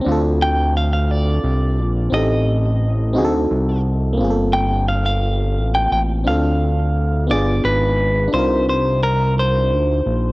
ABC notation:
X:1
M:6/8
L:1/16
Q:3/8=58
K:Gm
V:1 name="Clean electric guitar"
z2 g2 f f d6 | e8- e2 z2 | z2 g2 f f4 g g2 | f6 d2 =B4 |
c2 c2 B2 c6 |]
V:2 name="FM electric piano"
[CDFA]12 | [CEGA]6 [CE^F_A=A]6 | [B,CF_A=A]12 | [CDFA]6 [=B,DF_A]6 |
[DEFB]12 |]
V:3 name="Analog synth bass" clef=bass
D,,8 C,,2 B,,,2 | A,,,6 D,,2 C,,4 | G,,,8 A,,,2 A,,,2 | D,,6 G,,,2 _A,,,4 |
C,,8 D,,2 B,,,2 |]